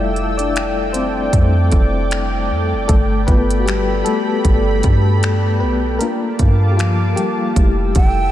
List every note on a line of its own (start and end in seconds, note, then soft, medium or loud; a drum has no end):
0.00 1.29 F1 loud
0.00 0.90 G3 medium
0.00 0.90 A3 soft
0.00 1.34 E4 medium
0.00 2.91 F4 medium
0.00 2.85 A4 medium
0.00 5.97 D5 medium
0.00 0.34 E5 loud
0.00 2.91 F5 loud
0.00 5.97 G5 medium
0.00 0.93 E6 medium
0.16 closed hi-hat soft
0.38 0.91 D4 medium
0.38 0.90 D5 loud
0.38 closed hi-hat medium
0.56 finger snap loud
0.56 closed hi-hat medium
0.93 1.31 C4 medium
0.93 1.30 C5 medium
0.93 2.87 D6 medium
0.93 closed hi-hat medium
1.32 1.70 F2 loud
1.32 1.68 G3 soft
1.32 2.47 A3 medium
1.32 1.69 E4 medium
1.32 2.45 A4 medium
1.32 kick medium
1.32 closed hi-hat medium
1.72 2.52 F1 loud
1.72 kick loud
1.72 closed hi-hat medium
2.11 finger snap loud
2.11 closed hi-hat medium
2.50 2.74 F2 loud
2.73 2.88 F1 loud
2.88 3.26 G1 loud
2.88 3.26 A3 medium
2.88 3.29 A4 loud
2.88 5.97 A4 medium
2.88 5.98 B5 medium
2.88 kick loud
2.88 closed hi-hat medium
3.27 4.03 G1 loud
3.27 4.06 A3 medium
3.27 3.59 B3 medium
3.27 4.41 F4 medium
3.27 3.58 B4 loud
3.27 kick medium
3.27 closed hi-hat soft
3.50 closed hi-hat medium
3.60 3.66 F#4 medium
3.66 4.04 G3 medium
3.66 4.06 G4 medium
3.66 finger snap loud
3.66 closed hi-hat medium
4.05 5.58 A3 medium
4.05 5.57 A4 loud
4.05 closed hi-hat medium
4.45 4.82 G1 loud
4.45 kick medium
4.45 closed hi-hat medium
4.83 5.63 G2 loud
4.83 kick medium
4.83 closed hi-hat medium
5.23 finger snap loud
5.23 closed hi-hat medium
5.60 5.99 B1 loud
5.60 5.99 B3 medium
5.60 6.01 B4 medium
5.99 7.55 A#3 medium
5.99 6.69 A#3 medium
5.99 7.14 D4 medium
5.99 6.76 F4 medium
5.99 7.13 A4 medium
5.99 6.74 A#4 medium
5.99 7.55 F5 medium
5.99 7.55 A5 medium
5.99 7.55 D6 medium
5.99 closed hi-hat medium
6.39 7.14 G2 medium
6.39 kick medium
6.39 closed hi-hat medium
6.72 6.78 G4 medium
6.77 7.15 F3 medium
6.77 7.18 F4 medium
6.77 finger snap loud
6.77 closed hi-hat medium
7.16 7.55 G3 medium
7.16 8.30 G4 medium
7.16 closed hi-hat medium
7.56 7.94 F1 loud
7.56 8.32 G3 medium
7.56 8.32 A3 soft
7.56 8.32 E4 medium
7.56 8.32 A4 medium
7.56 8.32 E5 medium
7.56 8.32 G5 medium
7.56 8.32 E6 medium
7.56 kick medium
7.56 closed hi-hat medium
7.95 8.32 F1 loud
7.95 8.32 G5 medium
7.95 kick loud
7.95 closed hi-hat medium